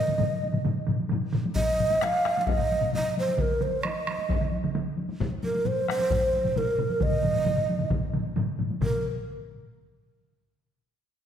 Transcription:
Already playing: shakuhachi D#5
0.08 taiko low-mid, taiko mid, taiko high
0.18 taiko low-mid, taiko mid, taiko high
0.43 taiko high
0.52 taiko low-mid, taiko mid, taiko high
0.65 taiko low-mid, taiko mid, taiko high
0.87 taiko low-mid, taiko mid, taiko high
1.00 taiko high
1.09 taiko low-mid, taiko mid, taiko high
1.33 taiko low-mid, taiko mid, taiko high
1.45 taiko high
1.56 shakuhachi D#5, taiko, taiko low-mid, taiko high
1.80 taiko low-mid, taiko high
1.91 taiko high
2.02 shakuhachi F5, taiko rim, taiko high
2.25 taiko rim, taiko high
2.37 shakuhachi F5, taiko high
2.47 shakuhachi D#5, taiko, taiko high
2.59 taiko low-mid
2.72 taiko high
2.82 taiko low-mid, taiko high
2.93 shakuhachi D#5, taiko low-mid, taiko high
3.17 shakuhachi C5, taiko high
3.28 taiko high
3.37 shakuhachi A#4, taiko, taiko mid, taiko high
3.61 shakuhachi C5, taiko mid, taiko high
3.83 shakuhachi D#5, taiko rim, taiko high
4.07 taiko rim, taiko high
4.18 taiko high
4.29 taiko, taiko high
4.41 taiko mid
4.52 taiko high
4.64 taiko mid, taiko high
4.75 taiko mid, taiko high
4.97 taiko high
5.09 taiko high
5.20 taiko, taiko low-mid, taiko high
5.43 shakuhachi A#4, taiko high
5.55 taiko high
5.66 shakuhachi C5, taiko low-mid, taiko high
5.88 shakuhachi C5, taiko rim, taiko high
5.99 taiko high
6.10 taiko, taiko low-mid, taiko high
6.33 taiko high
6.44 taiko low-mid, taiko high
6.56 shakuhachi A#4, taiko low-mid, taiko high
6.79 taiko low-mid, taiko high
6.89 taiko high
7.00 shakuhachi D#5, taiko, taiko low-mid, taiko mid, taiko high
7.11 taiko low-mid, taiko mid
7.23 taiko low-mid, taiko mid, taiko high
7.34 taiko low-mid, taiko mid, taiko high
7.45 taiko low-mid, taiko mid, taiko high
7.57 taiko low-mid, taiko mid
7.69 taiko high
7.79 taiko low-mid, taiko mid, taiko high
7.90 taiko, taiko low-mid, taiko mid, taiko high
8.13 taiko low-mid, taiko mid, taiko high
8.25 taiko high
8.36 taiko low-mid, taiko mid, taiko high
8.59 taiko low-mid, taiko mid, taiko high
8.70 taiko high
8.81 shakuhachi A#4, taiko, taiko low-mid, taiko mid, taiko high

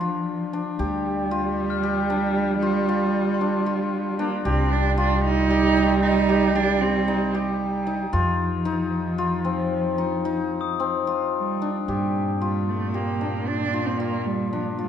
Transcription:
Already playing: upright bass D2, cello F3, hammered dulcimer D4 G4
0.01 hammered dulcimer F4
0.53 hammered dulcimer D4
0.79 upright bass D2, cello G3, hammered dulcimer G4
1.31 hammered dulcimer F4
1.70 glockenspiel F6
1.83 hammered dulcimer G4
2.10 hammered dulcimer D4
2.62 hammered dulcimer F4
2.89 hammered dulcimer F4
3.34 glockenspiel C6
3.41 hammered dulcimer D4
3.66 hammered dulcimer F4
4.19 cello A#3, hammered dulcimer D4
4.45 upright bass C2, cello G3 C4, hammered dulcimer G4
4.72 cello D4
4.97 cello D4, hammered dulcimer F4
5.24 cello D#4
5.50 hammered dulcimer G4
5.77 hammered dulcimer D#4
6.03 cello D#4
6.29 hammered dulcimer G4
6.55 cello D4, hammered dulcimer G4
6.81 cello C4
7.08 hammered dulcimer D#4
7.34 hammered dulcimer G4
7.87 hammered dulcimer D#4
8.13 upright bass F2, cello F3, hammered dulcimer F4
8.65 hammered dulcimer D#4
9.18 hammered dulcimer F4
9.45 hammered dulcimer C4
9.98 hammered dulcimer D#4
10.25 hammered dulcimer D#4
10.61 glockenspiel D#6
10.80 hammered dulcimer C4
11.07 hammered dulcimer F4
11.34 cello G3
11.62 hammered dulcimer D4
11.87 upright bass G2, cello A#2 G3, hammered dulcimer G4
12.41 cello G3, hammered dulcimer F4
12.69 cello A3
12.94 cello A#3, hammered dulcimer G4
13.21 hammered dulcimer D4
13.48 cello D4
13.74 hammered dulcimer F4
13.86 cello C4
13.99 cello A#3, hammered dulcimer F4
14.26 cello G3
14.53 cello F3, hammered dulcimer D4
14.79 cello G3, hammered dulcimer F4

